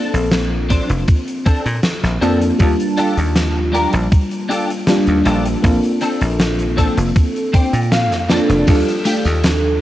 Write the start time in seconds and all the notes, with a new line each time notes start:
Already playing: A#3 C4 D4 F4 A4
0.14 A#1, closed hi-hat
0.32 snare, closed hi-hat
0.70 C4 D4 C5, kick, closed hi-hat
0.89 F1, closed hi-hat
1.08 kick, closed hi-hat
1.28 closed hi-hat
1.46 C4 D4 A4, kick, closed hi-hat
1.66 A#2, closed hi-hat
1.83 snare, closed hi-hat
2.03 A#1, snare, closed hi-hat
2.21 F2 A#3 C4 D4 F4 A4, closed hi-hat
2.41 closed hi-hat
2.58 D#2 G3 A#3 D4 F4 A5, kick, closed hi-hat
2.80 closed hi-hat
2.97 D4 F4 G4 A4, closed hi-hat
3.17 D#2, closed hi-hat
3.36 snare, closed hi-hat
3.73 D4 F4 G4 A#4, closed hi-hat
3.93 A#1, closed hi-hat
4.12 kick, closed hi-hat
4.31 closed hi-hat
4.49 D4 F4 G4 A4, closed hi-hat
4.70 closed hi-hat
4.87 G3 A#3 D4 F4, snare, closed hi-hat
5.07 D#2, closed hi-hat
5.25 A#1 D4 F4 G4 A4, closed hi-hat
5.46 closed hi-hat
5.62 A#1 A#3 C4 D4 F4 A4, kick, closed hi-hat
5.83 closed hi-hat
6.01 C4 D4 A4, closed hi-hat
6.21 A#1, closed hi-hat
6.40 snare, closed hi-hat
6.59 closed hi-hat
6.77 C4 D4 A4, kick, closed hi-hat
6.97 F1, closed hi-hat
7.16 kick, closed hi-hat
7.36 closed hi-hat
7.53 C4 D4 C5 G5, kick, closed hi-hat
7.73 A#2, closed hi-hat
7.92 F5, snare, closed hi-hat
8.11 F2, snare, closed hi-hat
8.29 A#3 C4 D4 F4 A4 D5, snare, closed hi-hat
8.49 F1, closed hi-hat
8.66 D#2 G3 D4 F4 A4, kick, closed hi-hat, crash, tambourine
8.89 closed hi-hat
9.05 A3 D4 F4 G4, closed hi-hat, tambourine
9.25 D#2, closed hi-hat, tambourine
9.44 snare, closed hi-hat, tambourine